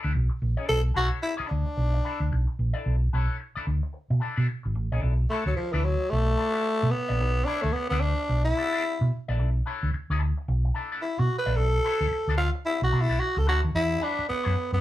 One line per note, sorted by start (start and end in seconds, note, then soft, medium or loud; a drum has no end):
0.03 0.12 D2 medium
0.03 0.12 D4 medium
0.03 0.12 E4 medium
0.03 0.13 A4 medium
0.03 0.14 D5 medium
0.14 0.27 B1 loud
0.14 muted clean electric guitar stroke soft
0.29 muted clean electric guitar stroke soft
0.42 0.54 A#1 medium
0.57 0.79 D4 medium
0.57 0.78 E4 medium
0.57 0.78 A4 medium
0.57 0.78 D5 medium
0.69 0.90 B1 loud
0.69 0.81 A4 loud
0.94 1.08 B1 medium
0.94 1.18 D4 medium
0.94 1.18 E4 medium
0.94 1.09 F#4 loud
0.94 1.18 A4 medium
0.94 1.19 C#5 medium
1.22 1.35 E4 medium
1.22 muted clean electric guitar stroke medium
1.37 1.48 D4 medium
1.37 1.48 E4 medium
1.37 1.48 A4 medium
1.37 1.50 D5 medium
1.37 muted fingered electric bass stroke soft
1.49 1.63 D2 medium
1.49 2.54 D4 medium
1.49 muted clean electric guitar stroke soft
1.66 muted clean electric guitar stroke medium
1.77 1.98 B1 medium
1.77 muted clean electric guitar stroke soft
1.94 muted clean electric guitar stroke medium
2.04 2.27 D4 medium
2.04 2.20 E4 medium
2.04 2.20 A4 medium
2.04 2.20 D5 medium
2.20 2.29 D2 medium
2.20 muted clean electric guitar stroke soft
2.32 2.44 B1 loud
2.32 muted clean electric guitar stroke soft
2.47 muted clean electric guitar stroke soft
2.59 2.71 A#1 medium
2.73 2.96 D4 medium
2.73 2.95 E4 medium
2.73 2.95 A4 medium
2.73 2.95 D5 medium
2.86 3.07 B1 loud
3.13 3.26 B1 loud
3.13 3.36 D4 medium
3.13 3.36 E4 medium
3.13 3.36 A4 medium
3.13 3.37 C#5 medium
3.40 muted clean electric guitar stroke soft
3.55 3.65 D4 medium
3.55 3.66 E4 medium
3.55 3.66 A4 medium
3.55 3.67 D5 medium
3.55 muted fingered electric bass stroke soft
3.67 3.80 D2 medium
3.67 muted clean electric guitar stroke soft
3.83 muted clean electric guitar stroke soft
3.93 muted clean electric guitar stroke soft
4.10 4.19 B2 medium
4.10 muted clean electric guitar stroke soft
4.20 4.36 D4 medium
4.20 4.36 E4 medium
4.20 4.35 A4 medium
4.20 4.35 D5 medium
4.36 4.46 B2 medium
4.36 4.47 D4 medium
4.36 4.47 E4 medium
4.36 4.47 A4 medium
4.36 4.48 D5 medium
4.48 muted clean electric guitar stroke soft
4.63 4.75 G#1 medium
4.63 muted clean electric guitar stroke soft
4.75 4.88 A1 medium
4.92 5.01 A#1 medium
4.92 5.14 D4 medium
4.92 5.13 E4 medium
4.92 5.13 A4 medium
4.92 5.13 D5 medium
5.03 5.24 B1 loud
5.30 5.45 A3 medium
5.30 5.53 D4 medium
5.30 5.54 E4 medium
5.30 5.54 A4 medium
5.30 5.54 C#5 medium
5.46 5.55 D2 medium
5.46 5.56 F#3 medium
5.56 5.74 F3 medium
5.56 muted clean electric guitar stroke soft
5.56 muted fingered electric bass stroke soft
5.72 5.95 D2 medium
5.72 5.86 E3 medium
5.72 5.83 D4 medium
5.72 5.83 E4 medium
5.72 5.83 A4 medium
5.72 5.84 D5 loud
5.84 6.12 F#3 medium
5.84 muted clean electric guitar stroke soft
5.99 muted clean electric guitar stroke medium
6.09 6.33 B1 medium
6.09 6.92 A3 loud
6.09 muted clean electric guitar stroke soft
6.27 muted clean electric guitar stroke soft
6.38 6.55 D4 medium
6.38 6.54 E4 medium
6.38 6.53 A4 medium
6.38 6.53 D5 medium
6.54 6.63 D4 soft
6.54 6.63 E4 medium
6.54 6.64 A4 medium
6.54 6.65 D5 medium
6.64 muted clean electric guitar stroke soft
6.81 6.91 B2 loud
6.81 muted clean electric guitar stroke soft
6.91 7.47 B3 loud
7.09 7.21 A#1 medium
7.09 7.31 D4 medium
7.09 7.31 E4 medium
7.09 7.30 A4 medium
7.09 7.30 D5 medium
7.21 7.42 B1 loud
7.45 7.64 D4 loud
7.45 7.70 D4 medium
7.45 7.71 E4 medium
7.45 7.71 A4 medium
7.45 7.71 C#5 loud
7.62 7.73 D2 medium
7.62 7.74 A3 medium
7.73 7.89 B3 loud
7.73 muted clean electric guitar stroke soft
7.90 8.13 D2 loud
7.90 8.02 B3 loud
7.90 8.00 D4 medium
7.90 8.01 E4 medium
7.90 8.02 A4 medium
7.90 8.03 D5 medium
8.00 8.44 D4 loud
8.00 muted clean electric guitar stroke soft
8.18 muted clean electric guitar stroke soft
8.28 8.51 B1 medium
8.28 muted clean electric guitar stroke soft
8.45 9.23 E4 loud
8.45 muted clean electric guitar stroke soft
8.56 8.74 D4 medium
8.56 8.73 E4 medium
8.56 8.73 A4 medium
8.56 8.72 D5 medium
8.73 8.83 D4 medium
8.73 8.84 E4 medium
8.73 8.84 A4 medium
8.73 8.85 D5 medium
8.84 muted clean electric guitar stroke soft
9.01 9.09 B2 loud
9.01 muted clean electric guitar stroke medium
9.28 9.39 A#1 medium
9.28 9.50 D4 medium
9.28 9.49 E4 medium
9.28 9.49 A4 medium
9.28 9.49 D5 loud
9.39 9.60 B1 loud
9.66 9.89 D4 medium
9.66 9.89 E4 medium
9.66 9.89 A4 medium
9.66 9.89 C#5 loud
9.83 9.91 D2 medium
9.93 muted clean electric guitar stroke soft
9.93 muted fingered electric bass stroke medium
10.10 10.31 D2 loud
10.10 10.21 D4 medium
10.10 10.21 E4 medium
10.10 10.22 A4 medium
10.10 10.23 D5 medium
10.22 muted clean electric guitar stroke soft
10.37 muted clean electric guitar stroke soft
10.48 10.69 B1 loud
10.48 muted clean electric guitar stroke soft
10.65 muted clean electric guitar stroke soft
10.74 10.92 D4 medium
10.74 10.91 E4 medium
10.74 10.91 A4 medium
10.74 10.91 D5 medium
10.92 11.01 D4 medium
10.92 11.02 E4 medium
10.92 11.02 A4 medium
10.92 11.03 D5 medium
11.02 11.21 E4 medium
11.02 muted clean electric guitar stroke soft
11.19 11.28 B2 loud
11.19 11.38 F#4 medium
11.19 muted clean electric guitar stroke medium
11.38 11.58 B4 medium
11.46 11.57 A#1 loud
11.46 11.67 D4 medium
11.46 11.67 E4 medium
11.46 11.67 A4 medium
11.46 11.66 D5 loud
11.56 11.78 B1 loud
11.56 12.37 A4 loud
11.85 12.07 D4 medium
11.85 12.07 E4 loud
11.85 12.08 A4 medium
11.85 12.08 C#5 loud
12.01 12.09 D2 medium
12.11 muted fingered electric bass stroke medium
12.11 muted clean electric guitar stroke soft
12.27 12.49 D2 medium
12.27 12.38 D4 medium
12.27 12.38 E4 medium
12.27 12.39 A4 medium
12.27 12.40 D5 medium
12.38 12.50 F4 medium
12.38 muted clean electric guitar stroke soft
12.55 muted clean electric guitar stroke soft
12.66 12.83 E4 loud
12.66 muted clean electric guitar stroke soft
12.82 12.90 B1 medium
12.82 13.03 F#4 medium
12.82 muted clean electric guitar stroke soft
12.92 13.06 B2 medium
12.92 13.10 D4 medium
12.92 13.09 E4 medium
12.92 13.09 A4 medium
12.92 13.08 D5 medium
13.01 13.21 E4 medium
13.09 13.18 B1 medium
13.09 13.19 D4 medium
13.09 13.20 E4 medium
13.09 13.20 A4 medium
13.09 13.21 D5 medium
13.20 13.40 F#4 medium
13.20 muted clean electric guitar stroke soft
13.35 13.48 C#2 loud
13.35 13.47 A4 medium
13.35 muted clean electric guitar stroke medium
13.47 13.60 D2 loud
13.47 13.70 D4 loud
13.47 13.64 E4 medium
13.47 13.61 F#4 loud
13.47 13.63 A4 loud
13.47 13.62 C#5 medium
13.63 13.73 D#2 medium
13.63 muted clean electric guitar stroke medium
13.75 13.96 E2 loud
13.75 14.05 E4 loud
14.01 14.24 G3 medium
14.01 14.25 D4 medium
14.01 14.28 D4 loud
14.01 14.25 F#4 medium
14.01 14.25 B4 medium
14.19 muted fingered electric bass stroke soft
14.29 14.70 B3 loud
14.29 muted clean electric guitar stroke soft
14.29 muted fingered electric bass stroke soft
14.44 14.54 F#2 medium
14.44 14.55 G3 medium
14.44 14.55 D4 medium
14.44 14.55 F#4 medium
14.44 14.57 C#5 medium
14.56 muted clean electric guitar stroke soft
14.72 14.81 F#2 medium
14.72 14.81 B3 medium
14.72 muted clean electric guitar stroke medium